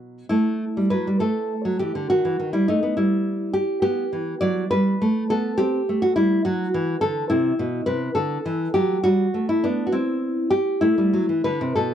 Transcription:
nylon-string guitar
Already playing: B2 F#3 B3
0.29 A3 E4
0.77 G3
0.90 F#3 B4
1.07 G3
1.20 A3 A4
1.65 F#3
1.79 E3 G4
1.95 D3
2.10 D#3 F#4
2.25 E3
2.40 D#3
2.53 G3 E4
2.68 A3 D#4
2.83 B3
2.97 G3 E4
3.54 G4
3.82 B3 G4
4.13 E3
4.41 F#3 D5
4.71 G3 B4
5.02 A3
5.30 B3 A4
5.58 C4 G4
5.89 A3
6.02 F#4
6.16 G3 E4
6.45 F#3 F#4
6.74 E3
7.01 D3 A4
7.30 C3 E4
7.59 B2
7.86 C3 B4
8.15 D3 A4
8.46 E3
8.74 F#3 G4
9.04 G3 F#4
9.34 A3
9.49 E4
9.64 B3 D4
9.87 F#4
9.92 C4 E4
10.51 G4
10.81 A3 E4
10.98 G3
11.13 F#3
11.29 E3
11.44 D3 B4
11.61 C3
11.76 B2 A4

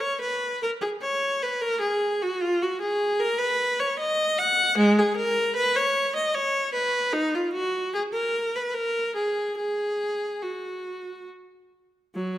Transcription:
viola
0.00 C#5
0.21 B4
0.62 A#4
0.81 G#4
1.02 C#5
1.42 B4
1.61 A#4
1.81 G#4
2.22 F#4
2.41 F4
2.63 F#4
2.81 G#4
3.20 A#4
3.39 B4
3.80 C#5
3.99 D#5
4.38 F#5
4.78 G#3
4.99 G#4
5.17 A#4
5.56 B4
5.76 C#5
6.16 D#5
6.35 C#5
6.74 B4
7.13 D#4
7.35 F4
7.53 F#4
7.94 G#4
8.13 A#4
8.55 B4
8.74 A#4
9.16 G#4
9.57 G#4
10.42 F#4
12.15 F#3

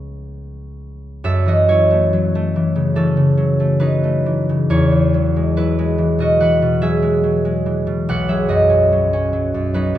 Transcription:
harp
Already playing: C#2 F3 A3 B3 C#5
1.24 F#2 A4 E5
1.46 E3 F#4 D#5
1.68 F#3 E4 C#5
1.91 A3
2.13 F#3
2.35 A3
2.56 E3
2.76 C#3
2.95 E3 C#4 A4
3.17 C#3
3.37 F#3
3.60 A3
3.80 F#3 D#4 B4
4.04 A3
4.26 E3
4.49 C#3
4.70 E2 E4 C#5
4.91 E3
5.14 F#3
5.36 G#3
5.57 F#3 E4 B4
5.79 G#3
5.98 E3
6.19 B2 F#4 D#5
6.40 E3 B4 F#5
6.62 B2
6.81 F#3 G#4 E5
7.03 G#3
7.24 F#3
7.45 G#3
7.66 E3
7.87 B2
8.09 B1 B4 F#5
8.28 F#3 G#4 E5
8.48 F#2 F#4 D#5
8.69 C#4
8.92 F#3
9.13 C#4
9.33 F#3
9.54 F#2
9.74 F#3 D#4 B4
9.95 F#2

